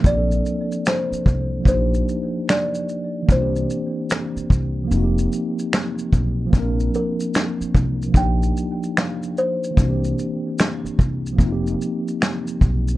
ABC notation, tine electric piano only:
X:1
M:4/4
L:1/8
Q:"Swing 16ths" 1/4=74
K:Bb
V:1 name="Tine electric piano"
[F,B,CDGA]4 [F,B,DEG]4 | [=E,B,CDFG]4 [F,B,C_E_G=G]4 | [F,B,CDB]4 [F,B,DEG]4 | [=E,B,CD_G=G]4 [F,B,C_EFG]4 |]